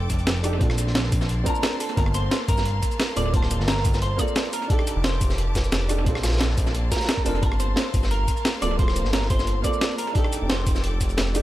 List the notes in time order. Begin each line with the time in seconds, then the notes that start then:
Already playing: D4 D#4 G4 A4 G5 D6
0.10 F1, kick, closed hi-hat, shaker
0.19 closed hi-hat, shaker
0.27 snare, closed hi-hat
0.36 closed hi-hat
0.43 D4 D#4 G4 A4, cross-stick, closed hi-hat, open hi-hat, shaker
0.59 A#1 A#3 C4 D4 F4 D5 A5 C6, kick, closed hi-hat
0.64 A4
0.69 cross-stick, snare
0.78 closed hi-hat, shaker
0.87 A#1, snare
0.95 snare, closed hi-hat
1.04 snare
1.12 A#1, kick, closed hi-hat, open hi-hat, shaker
1.21 snare, shaker
1.29 closed hi-hat
1.44 C4 D4 F4 A#4, kick, closed hi-hat, shaker
1.49 A5
1.55 shaker
1.63 snare, closed hi-hat
1.72 closed hi-hat
1.80 A4, closed hi-hat, open hi-hat, shaker
1.89 closed hi-hat
1.95 G1 A#3 C4 F4 A#4 F5, kick, closed hi-hat
2.00 A5
2.06 cross-stick
2.14 C5, closed hi-hat, shaker
2.31 snare, closed hi-hat
2.48 G1 A#4, kick, closed hi-hat, open hi-hat, shaker
2.57 snare, shaker
2.65 closed hi-hat
2.82 kick, closed hi-hat, shaker
2.91 closed hi-hat, shaker
3.00 snare, closed hi-hat
3.09 closed hi-hat
3.15 D1 A#3 C4 F4 A4 D5, cross-stick, closed hi-hat, open hi-hat, shaker
3.31 A#3 C4 F4 C5, kick, closed hi-hat
3.36 A5
3.42 cross-stick, snare
3.51 closed hi-hat, shaker
3.60 G1, snare
3.68 A#4, snare, closed hi-hat
3.77 snare
3.84 G1, kick, closed hi-hat, open hi-hat, shaker
3.94 snare, shaker
4.02 C5, closed hi-hat
4.17 A#3 C4 F4 D5, kick, closed hi-hat, shaker
4.21 A4
4.28 shaker
4.35 snare, closed hi-hat
4.45 closed hi-hat
4.53 A#4, closed hi-hat, open hi-hat, shaker
4.62 closed hi-hat
4.68 D4 D#4 G4 A4 D6, kick, closed hi-hat
4.73 A4
4.79 cross-stick
4.87 closed hi-hat, shaker
4.96 F1
5.04 C5, snare, closed hi-hat
5.21 F1, kick, closed hi-hat, open hi-hat, shaker
5.30 snare, shaker
5.38 closed hi-hat
5.55 F1, kick, snare, closed hi-hat, shaker
5.64 closed hi-hat, shaker
5.72 snare, closed hi-hat
5.81 closed hi-hat
5.88 D4 D#4 G4 A4, cross-stick, closed hi-hat, open hi-hat, shaker
6.04 A#1 A#3 C4 D4 F4 D5 C6, kick, closed hi-hat
6.09 A4
6.15 cross-stick, snare
6.24 cross-stick, snare, closed hi-hat, shaker
6.27 snare, closed hi-hat
6.32 A#1, snare, closed hi-hat
6.37 snare, closed hi-hat
6.41 snare, closed hi-hat
6.49 snare
6.57 A#1, kick, closed hi-hat, open hi-hat, shaker
6.66 snare, shaker
6.74 closed hi-hat
6.91 A#4, kick, snare, closed hi-hat, shaker
6.96 snare, closed hi-hat
7.01 snare, closed hi-hat, shaker
7.05 snare, closed hi-hat
7.08 snare, closed hi-hat
7.17 kick, closed hi-hat
7.25 F1 C4 D4 F4 A4 A#4, closed hi-hat, open hi-hat, shaker
7.35 closed hi-hat
7.40 G1 A#3 C4 F4 A#4 F5, kick, closed hi-hat
7.45 A5
7.52 cross-stick
7.59 C5, closed hi-hat, shaker
7.76 snare, closed hi-hat
7.94 G1, kick, closed hi-hat, open hi-hat, shaker
8.03 snare, shaker
8.11 A#4, closed hi-hat
8.28 kick, closed hi-hat, shaker
8.37 closed hi-hat, shaker
8.45 snare, closed hi-hat
8.54 closed hi-hat
8.61 D1 A#3 C4 F4 A4 D5, cross-stick, closed hi-hat, open hi-hat, shaker
8.77 A#3 C4 F4 C5, kick, closed hi-hat
8.82 A4
8.88 cross-stick, snare
8.95 closed hi-hat, shaker
9.05 G1, snare
9.13 A#4, snare, closed hi-hat
9.22 snare
9.30 G1 C5, kick, closed hi-hat, open hi-hat, shaker
9.39 snare, shaker
9.47 closed hi-hat
9.62 A#3 C4 F4 D5, kick, closed hi-hat, shaker
9.67 A4
9.73 shaker
9.81 snare, closed hi-hat
9.91 closed hi-hat
9.98 A#4, closed hi-hat, open hi-hat, shaker
10.07 closed hi-hat
10.13 D4 D#4 G4 A4 G5 D6, kick, closed hi-hat
10.18 A4
10.24 cross-stick
10.33 closed hi-hat, shaker
10.41 F1
10.49 C5, snare, closed hi-hat
10.67 F1, kick, closed hi-hat, open hi-hat, shaker
10.75 snare, shaker
10.84 closed hi-hat
11.00 F1, kick, closed hi-hat, shaker
11.09 closed hi-hat, shaker
11.17 snare, closed hi-hat
11.27 closed hi-hat
11.34 D4 D#4 G4 A4, cross-stick, closed hi-hat, open hi-hat, shaker